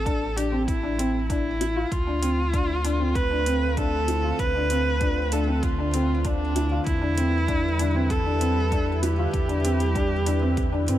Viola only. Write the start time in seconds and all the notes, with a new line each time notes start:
Already playing: A4
0.37 G4
0.67 E4
1.30 E4
1.92 F4
3.15 B4
3.77 A4
4.40 B4
5.32 A4
5.63 F4
6.25 D4
6.87 E4
8.11 A4
9.03 G4